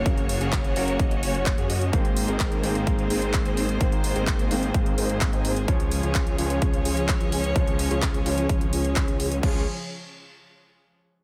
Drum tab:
CC |----------------|----------------|----------------|----------------|
HH |xxoxxxoxxxoxxxox|xxoxxxoxxxoxxxox|xxoxxxoxxxoxxxox|xxoxxxoxxxoxxxox|
CP |----x-------x---|----x-------x---|----x-------x---|----x-------x---|
BD |o---o---o---o---|o---o---o---o---|o---o---o---o---|o---o---o---o---|

CC |----------------|x---------------|
HH |xxoxxxoxxxoxxxox|----------------|
CP |----x-------x---|----------------|
BD |o---o---o---o---|o---------------|